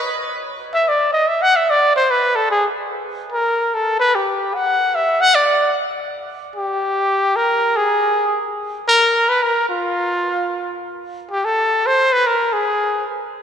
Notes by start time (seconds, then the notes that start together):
0.74 E5
0.88 D5
1.13 D#5
1.28 E5
1.42 F#5
1.56 E5
1.70 D5
1.96 C5
2.11 B4
2.36 A4
2.51 G#4
3.32 A#4
3.75 A4
3.99 B4
4.15 G4
4.55 F#5
4.95 E5
5.21 F#5
5.35 D5
6.56 G4
7.36 A#4
7.76 G#4
8.88 A#4
9.29 B4
9.43 A#4
9.69 F4
11.31 G4
11.45 A4
11.86 C5
12.13 B4
12.27 A#4
12.53 G#4